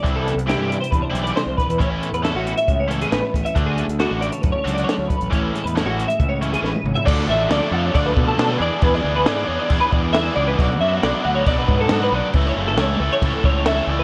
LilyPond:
<<
  \new Staff \with { instrumentName = "Clean electric guitar" } { \time 4/4 \key a \major \tempo 4 = 137 r16 a'8 r16 g'8 d''16 c''16 b'16 c''8 d''16 c''8 b'8 | cis''16 b'16 a'16 b'16 a'16 fis'8 e''8 cis''16 a'16 gis'16 b'8 r16 e''16 | r16 gis'8 r16 fis'8 d''16 cis''16 b'16 cis''8 d''16 cis''8 b'8 | cis''16 b'16 a'16 b'16 a'16 fis'8 e''8 cis''16 a'16 gis'16 b'8 r16 e''16 |
d''8 e''8 d''8 f''16 cis''16 d''16 b'8 a'8 b'16 d''8 | b'16 d''8 b'16 d''8 cis''16 d''8 b'16 d''8 e''8 d''16 b'16 | d''8 e''8 d''8 fis''16 cis''16 d''16 b'8 a'8 b'16 d''8 | b'16 cis''8 a'16 cis''8 b'16 cis''8 a'16 cis''8 e''8 d''16 b'16 | }
  \new Staff \with { instrumentName = "Overdriven electric guitar" } { \time 4/4 \key a \major <e g c' e'>8 r8 <e g c' e'>8 r4 <e g c' e'>8 r4 | <e a cis' e'>8 r8 <e a cis' e'>8 r4 <e a cis' e'>8 r4 | <d a d' fis'>8 r8 <d a d' fis'>8 r4 <d a d' fis'>8 r4 | <e a cis' e'>8 r8 <e a cis' e'>8 r4 <e a cis' e'>8 r4 |
<d f a d' a'>8 <a d' a'>8 <f a d' a'>8 <a d' a'>8 <d f a d' a'>4 <f a d' a'>8 <e b d' gis'>8 | <e b d' gis'>8 <b d' gis'>8 <e b d' gis'>8 <b d' gis'>8 <e b d' gis'>4 <e b d' gis'>8 <b d' gis'>8 | <b, fis b d' fis'>8 <b d' fis'>8 <fis b d' fis'>8 <b d' fis'>8 <b, fis b d' fis'>4 <fis b d' fis'>8 <b d' fis'>8 | <cis e a e' a'>8 <a e' a'>8 <e a e' a'>8 <a e' a'>8 <cis e a e' a'>4 <e a e' a'>8 <a e' a'>8 | }
  \new Staff \with { instrumentName = "Clean electric guitar" } { \time 4/4 \key a \major << { e'8 b8 e'8 b8 d'2 | r8 b8 fis'8 b8 cis'4 b8 b16 cis'16 | r8 a8 e'8 a8 cis'4 a8 cis'8 | r8 gis8 gis'8 gis8 b16 cis'8. gis8 cis'8 |
r1 | r1 | r1 | r1 | } \\ { c2~ c8 e8 c8 b,8 | a,2~ a,8 e4. | d2~ d8 fis4. | a,2~ a,8 e4. |
r1 | r1 | r1 | r1 | } >> }
  \new Staff \with { instrumentName = "Fingered electric bass" } { \clef bass \time 4/4 \key a \major c,8. c,8 g,8 r16 e,16 r16 b,,8 r16 c,16 r16 e,16 | a,,8 r16 e,8 a,,8 r16 cis,4 a,,16 r16 a,,16 r16 | d,8. d,8 a,,8 r16 fis,16 r16 cis,8 r16 d,16 r16 a,,16 | a,,8 r16 e,8 a,,8 r16 cis,4 a,,16 r16 gis,,16 r16 |
d,8 a,,8 d,16 r16 f,8 d,8 b,8 b,8 e,16 r16 | e,8 d,8 gis,8 e,16 r16 e,16 r16 e,4 cis,8 | b,,8 fis,8 b,,16 r16 d,8 b,,8 gis,8 gis,8 b,,16 r16 | cis,8 fis,,8 cis,8 cis,16 r16 cis,16 r16 cis,4 cis,8 | }
  \new DrumStaff \with { instrumentName = "Drums" } \drummode { \time 4/4 <hh bd>8 hh16 hh16 <hh sn>8 hh16 hh16 <hh bd>8 hh16 hh16 <hh sn>8 <hh bd sn>16 hh16 | <hh bd>8 hh16 hh16 <hh sn>8 hh16 hh16 <hh bd>8 hh16 hh16 <hh sn>8 <hh bd sn>16 hh16 | <hh bd>8 hh16 hh16 <hh sn>8 hh16 hh16 <hh bd>8 hh16 hh16 <hh sn>8 <hh bd>16 hh16 | <hh bd>8 hh16 hh16 <hh sn>8 hh16 hh16 <hh bd>8 hh16 hh16 sn16 tommh16 toml16 tomfh16 |
<cymc bd>16 sn8. <cymc sn>4 <cymc bd>8 bd8 <cymc sn>4 | <cymc bd>16 sn8. <cymc sn>4 <cymc bd>8 bd8 <cymc sn>4 | <cymc bd>16 sn8. <cymc sn>4 <cymc bd>8 bd8 <cymc sn>4 | <cymc bd>16 sn8. <cymc sn>4 <cymc bd>8 bd8 <cymc sn>4 | }
>>